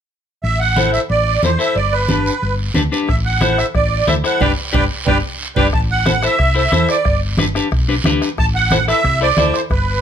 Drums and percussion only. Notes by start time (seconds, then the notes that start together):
0.44 high conga, long guiro
0.76 high conga, short guiro
0.94 short guiro
1.10 high conga, long guiro
1.43 high conga, short guiro
1.60 short guiro
1.75 high conga, long guiro
2.09 high conga, short guiro
2.26 short guiro
2.42 high conga, long guiro
2.74 high conga, short guiro
2.93 short guiro
3.08 bombo low, bombo rim, high conga, long guiro
3.41 bombo rim, high conga, short guiro
3.58 bombo rim, short guiro
3.75 bombo low, bombo rim, high conga, long guiro
4.07 bombo rim, high conga, short guiro
4.24 bombo rim, short guiro
4.41 bombo low, low conga, long guiro
4.74 bombo low, low conga, long guiro
5.07 bombo low, low conga
5.56 bombo low, low conga, long guiro
5.73 bombo low, bombo rim, high conga, long guiro
6.06 bombo rim, high conga, short guiro
6.22 bombo rim, short guiro
6.39 bombo low, bombo rim, high conga, long guiro
6.72 bombo rim, high conga, short guiro
6.89 bombo rim, short guiro
7.05 bombo low, bombo rim, high conga, long guiro
7.37 bombo rim, high conga, short guiro
7.55 bombo rim, short guiro
7.71 bombo low, bombo rim, high conga, long guiro
8.04 bombo rim, high conga, short guiro
8.22 bombo rim, short guiro
8.38 bombo low, bombo rim, high conga, long guiro
8.71 bombo rim, high conga, short guiro
8.88 bombo rim, short guiro
9.04 bombo low, bombo rim, high conga, long guiro
9.37 bombo rim, high conga, short guiro
9.54 bombo rim, short guiro
9.70 bombo low, bombo rim, high conga, long guiro